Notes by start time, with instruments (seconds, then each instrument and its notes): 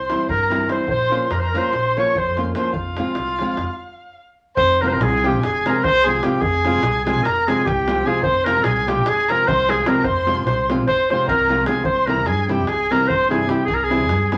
Already playing: upright bass C2, clarinet C5, violin C6
0.10 nylon-string guitar E3 G3 C4 E4, davul high
0.19 davul high
0.29 upright bass G2, clarinet A#4, violin A#5, davul low
0.50 nylon-string guitar E3 G3 C4 E4, davul high
0.68 nylon-string guitar E3 G3 C4 E4, clarinet C5, violin C6, davul high
0.79 davul high
0.87 upright bass A#1, clarinet C5, violin C6, davul low
1.10 nylon-string guitar F3 A#3 C#4 F4, davul high
1.30 upright bass F2, clarinet A#4, violin A#5 C6, davul high
1.39 clarinet C5, violin A#5, davul high
1.48 clarinet A#4
1.54 nylon-string guitar F3 A#3 C#4 F4, clarinet C5, violin C6, davul high
1.72 upright bass A#1, davul high
1.86 davul high
1.97 nylon-string guitar F3 A#3 C#4 F4, clarinet C#5, violin C#6, davul high
2.06 davul high
2.15 upright bass F2, clarinet C5, violin C6, davul low
2.36 nylon-string guitar F3 A#3 C#4 F4, davul high
2.55 nylon-string guitar F3 A#3 C#4 F4, clarinet C5, violin C6, davul high
2.64 davul high
2.73 upright bass F1, clarinet F4, violin F5, davul low
2.97 nylon-string guitar F3 G#3 C4 F4, davul high
3.07 davul high
3.15 upright bass C2, davul high
3.28 davul high
3.39 nylon-string guitar F3 G#3 C4 F4, davul high
3.57 upright bass F1, davul high
4.57 upright bass F1, clarinet C5, violin C6, davul low
4.81 nylon-string guitar C3 F3 G#3 C4 F4, clarinet A#4, violin A#5
4.87 clarinet C5, violin A#5 C6, davul high
4.93 clarinet A#4
5.00 upright bass C2, clarinet G#4, violin G#5, davul high
5.24 nylon-string guitar C3 F3 G#3 C4 F4, clarinet G4, violin G5, davul high
5.42 upright bass F1, clarinet G#4, violin G#5, davul high
5.66 nylon-string guitar C3 F3 G#3 C4 F4, clarinet A#4, violin A#5, davul high
5.71 clarinet G#4, violin G#5
5.75 clarinet A#4, violin A#5
5.82 upright bass C2, clarinet C5, violin C6, davul low
5.95 davul high
6.04 nylon-string guitar C3 F3 G#3 C4, clarinet G#4, violin G#5
6.08 nylon-string guitar F4
6.14 davul high
6.23 nylon-string guitar C3 F3 G#3 C4 F4, clarinet G4, violin G5, davul high
6.41 upright bass F1, clarinet G#4, violin G#5, davul low
6.64 nylon-string guitar C3 F3 G#3 C4 F4, davul high
6.75 davul high
6.83 upright bass C2, davul high
7.05 nylon-string guitar C3 F3 G#3 C4 F4, clarinet G#4, violin G#5, davul high
7.24 upright bass F1, clarinet A#4, violin A#5, davul high
7.47 nylon-string guitar C3 F3 G#3 C4 F4, clarinet G#4, violin G#5, davul high
7.66 upright bass C2, clarinet G4, violin G5, davul low
7.87 nylon-string guitar C3 F3 G#3 C4 F4, davul high
7.96 davul high
8.05 nylon-string guitar C3 F3 G#3 C4 F4, clarinet G#4, violin G#5
8.23 upright bass F1, clarinet C5, violin C6, davul low
8.45 nylon-string guitar C3 F3 G#3 C4 F4, clarinet A#4, violin A#5, davul high
8.56 davul high
8.64 upright bass C2, clarinet G#4, violin G#5, davul high
8.87 nylon-string guitar C3 F3 G#3 C4 F4, clarinet G4, violin G5, davul high
9.06 upright bass F1, clarinet G#4, violin G#5, davul high
9.29 nylon-string guitar C3 F3 G#3 C4 F4, clarinet A#4, violin A#5, davul high
9.47 upright bass C2, clarinet C5, violin C6, davul low
9.58 davul high
9.68 nylon-string guitar C3 F3 G#3 C4 F4, clarinet G#4, violin G#5, davul high
9.78 davul high
9.86 nylon-string guitar C3 F3 G#3 C4 F4, clarinet A#4, violin A#5, davul high
10.04 upright bass F1, clarinet C5, violin C6, davul low
10.16 davul high
10.26 nylon-string guitar C3 F3 G#3 C4 F4, davul high
10.37 davul high
10.46 upright bass C2, clarinet C5, violin C6, davul high
10.69 nylon-string guitar C3 F3 G#3 C4 F4, davul high
10.79 davul high
10.87 upright bass F1, clarinet C5, violin C6, davul high, davul low
10.99 davul high
11.10 nylon-string guitar C3 F3 G#3 C4 F4, clarinet C5, violin C6, davul high
11.20 davul high
11.28 upright bass C2, clarinet A#4, violin A#5, davul low
11.49 nylon-string guitar C3 F3 G#3 C4 F4, davul high
11.58 davul high
11.66 nylon-string guitar C3 F3 G#3 C4 F4, clarinet G#4, violin G#5, davul high
11.84 upright bass C2, clarinet C5, violin C6, davul low
12.07 nylon-string guitar C3 E3 G3 C4 E4, clarinet A#4, violin A#5, davul high
12.17 davul high
12.26 upright bass G2, clarinet G#4, violin G#5, davul high
12.48 nylon-string guitar C3 E3 G3 C4 E4, clarinet G4, violin G5, davul high
12.67 upright bass C2, clarinet G#4, violin G#5, davul high
12.91 nylon-string guitar C3 E3 G3 C4 E4, clarinet A#4, violin A#5, davul high
13.08 upright bass G2, clarinet C5, violin C6, davul low
13.21 davul high
13.29 nylon-string guitar C3 E3 G3 C4 E4, clarinet G#4, davul high
13.33 violin G#5
13.41 davul high
13.47 nylon-string guitar C3 E3 G3 C4 E4, clarinet G4, violin G5, davul high
13.65 upright bass C2, clarinet G#4, violin G#5, davul low
13.74 clarinet A#4, violin A#5
13.83 clarinet G#4, violin G#5
13.90 nylon-string guitar C3 E3 G3 C4 E4, davul high
14.00 davul high
14.09 upright bass G2, davul high
14.31 nylon-string guitar C3 E3 G3 C4 E4, clarinet G#4, violin G#5, davul high